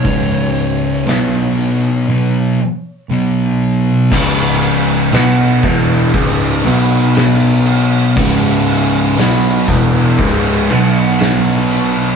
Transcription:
<<
  \new Staff \with { instrumentName = "Lead electric guitar" } { \time 4/4 \key cis \minor \tempo 4 = 59 cis''2. r4 | r1 | r1 | }
  \new Staff \with { instrumentName = "Distorted electric guitar" } { \clef bass \time 4/4 \key cis \minor <cis, gis, cis>4 <b, fis b>4 <b, fis b>8 r8 <b, fis b>4 | <cis, gis, cis>4 <b, fis b>8 <e, b, e>8 <cis, gis, cis>8 <b, fis b>4. | <cis, gis, cis>4 <b, fis b>8 <e, b, e>8 <cis, gis, cis>8 <b, fis b>4. | }
  \new Staff \with { instrumentName = "Distorted electric guitar" } { \clef bass \time 4/4 \key cis \minor <cis, gis, cis>4 <b, fis b>4 <b, fis b>8 r8 <b, fis b>4 | <cis, gis, cis>4 <b, fis b>8 <e, b, e>8 <cis, gis, cis>8 <b, fis b>4. | <cis, gis, cis>4 <b, fis b>8 <e, b, e>8 <cis, gis, cis>8 <b, fis b>4. | }
  \new Staff \with { instrumentName = "Overdriven electric guitar" } { \clef bass \time 4/4 \key cis \minor r1 | <cis, gis, cis>4 <b, fis b>8 <e, b, e>8 <cis, gis, cis>8 <b, fis b>4. | <cis, gis, cis>4 <b, fis b>8 <e, b, e>8 <cis, gis, cis>8 <b, fis b>4. | }
  \new Staff \with { instrumentName = "Grand piano" } { \clef bass \time 4/4 \key cis \minor cis,,4 b,,4 r2 | cis,,4 b,,8 e,,8 cis,,8 b,,4. | cis,,4 b,,8 e,,8 cis,,8 b,,4. | }
  \new DrumStaff \with { instrumentName = "Drums" } \drummode { \time 4/4 <hho bd>8 hho8 <hho sn>8 hho8 r4 r4 | <cymc bd>8 cymc8 <cymc sn>8 <cymc bd>8 <cymc bd>8 cymc8 <cymc sn>8 cymc8 | <cymc bd>8 cymc8 <cymc sn>8 <cymc bd>8 <cymc bd>8 cymc8 <cymc sn>8 cymc8 | }
>>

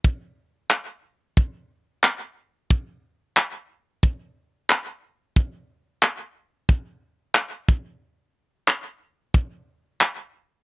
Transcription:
\new DrumStaff \with { instrumentName = "Drums" } \drummode { \time 4/4 \tempo 4 = 90 bd4 hc4 bd4 hc4 | bd4 hc4 bd4 hc4 | bd4 hc4 bd4 hc8 bd8 | r4 hc4 bd4 hc4 | }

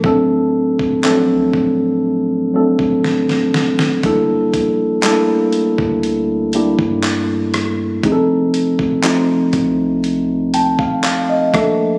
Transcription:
<<
  \new Staff \with { instrumentName = "Tine electric piano" } { \time 4/4 \key f \major \tempo 4 = 60 <fis a c' d' a'>4 <f fis a c' d' a'>4. <fis a c' d' a'>4. | <g bes d' e' a'>4 <g a bes d' e' a'>4. <g bes d' e' g'>4. | <f a c' ees' aes' a'>4 <f a c' ees' f'>4. <g'' a''>16 f''16 f''16 ees''16 <f a bes d' a' e''>8 | }
  \new Staff \with { instrumentName = "808-style bass" } { \clef bass \time 4/4 \key f \major d,,8. d,,8 d,16 d,,4 fis,,16 d,,4~ d,,16 | g,,8 bes,,8. r8 d,4 g,4~ g,16 | f,,8. f,,8. c,4~ c,16 ees,,8. bes,,8 | }
  \new DrumStaff \with { instrumentName = "Drums" } \drummode { \time 4/4 bd8. bd16 hc8 bd8 r8. bd16 sn16 sn16 sn16 sn16 | <hh bd>8 <hh bd>8 <hc hh>8 hh16 bd16 hh8 hh16 bd16 <hc hh>8 <hh ss>8 | <hh bd>8 hh16 bd16 <hc hh>8 <hh bd>8 hh8 hh16 bd16 <hc hh>8 <hh bd ss>8 | }
>>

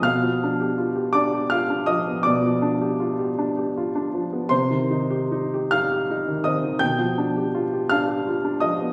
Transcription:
\new Staff \with { instrumentName = "Grand piano" } { \time 12/8 \key g \phrygian \tempo 4. = 54 << { <f'' f'''>4. <d'' d'''>8 <f'' f'''>8 <ees'' ees'''>8 <d'' d'''>2. | <c'' c'''>4. <f'' f'''>4 <ees'' ees'''>8 <g'' g'''>4. <f'' f'''>4 <ees'' ees'''>8 | } \\ { b,16 f16 d'16 g'16 f'16 g'16 d'16 g'16 f'16 d'16 f16 b16 b,16 f16 d'16 g'16 f'16 g'16 d'16 g'16 f'16 d'16 f16 b16 | c16 ees16 ees'16 g'16 ees'16 g'16 ees'16 g'16 ees'16 ees16 c'16 ees16 b,16 f16 d'16 g'16 f'16 g'16 d'16 g'16 f'16 d'16 f16 b16 | } >> }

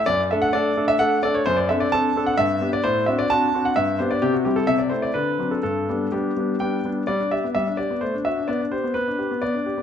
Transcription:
\new Staff \with { instrumentName = "Grand piano" } { \time 3/4 \key d \major \tempo 4 = 129 << { d''8 e''16 fis''16 d''8. e''16 fis''8 d''16 cis''16 | \key g \major c''16 d''16 e''16 d''16 a''8. fis''16 e''8. d''16 | c''8 e''16 d''16 a''8. fis''16 e''8 c''16 d''16 | g'16 fis'16 g'16 a'16 e''16 d''16 c''16 d''16 b'8. a'16 |
a'4 g'4 g''4 | d''8 e''8 e''8 d''8 c''8 e''8 | d''8 c''8 b'4 d''4 | } \\ { fis,8 <a d' a'>8 <a d' a'>8 <a d' a'>8 <a d' a'>8 <a d' a'>8 | fis,8 <c' d' a'>8 <c' d' a'>8 <c' d' a'>8 g,8 <b d' g'>8 | a,8 <c' d' fis'>8 <c' d' fis'>8 <c' d' fis'>8 g,8 <b d' g'>8 | c8 <g c' e'>8 c8 <a c' e'>8 d8 <fis c' d'>8 |
g,8 <g b d'>8 <g b d'>8 <g b d'>8 <g b d'>8 <g b d'>8 | g16 d'16 g'16 b16 g16 d'16 g'16 b16 a16 d'16 fis'16 d'16 | b16 d'16 g'16 b16 b16 d'16 g'16 b16 b16 d'16 g'16 b16 | } >> }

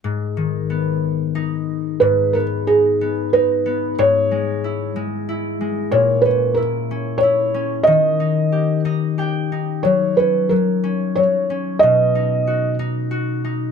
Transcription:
<<
  \new Staff \with { instrumentName = "Felt piano" } { \time 3/4 \key gis \minor \tempo 4 = 92 r2. | b'8 ais'8 gis'4 b'4 | cis''4. r4. | cis''8 b'8 ais'4 cis''4 |
dis''4. r4. | cis''8 b'8 ais'4 cis''4 | dis''4. r4. | }
  \new Staff \with { instrumentName = "Harp" } { \time 3/4 \key gis \minor << { r2. | r2. | r2. | r2. |
r4. dis''8 g''4 | r2. | r2. | } \\ { gis,8 dis8 b4 dis'4 | gis,8 b8 dis'8 b8 dis'8 b8 | gis,8 gis8 e'8 gis8 e'8 gis8 | ais,8 cis'8 e'8 cis'8 e'8 cis'8 |
dis8 dis'8 g'8 dis'8 g'8 dis'8 | fis8 cis'8 fis8 cis'8 fis8 cis'8 | b,8 dis'8 fis'8 dis'8 fis'8 dis'8 | } >> }
>>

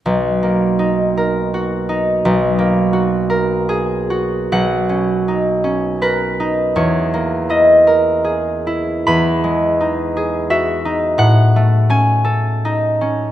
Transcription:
\new Staff \with { instrumentName = "Harp" } { \time 3/4 \key b \major \tempo 4 = 82 << { r2. | r2. | fis''2 b'4 | cis''4 dis''2 |
b''2 e''4 | fis''4 gis''2 | } \\ { b,,8 ais8 dis'8 ais'8 fis'8 dis'8 | b,,8 ais8 fis'8 ais'8 gis'8 fis'8 | b,,8 cis'8 dis'8 cis'8 ais'8 dis'8 | e,8 ais8 e'8 ais'8 gis'8 e'8 |
e,8 gis8 dis'8 gis'8 fis'8 dis'8 | a,8 a8 cis'8 a'8 dis'8 cis'8 | } >> }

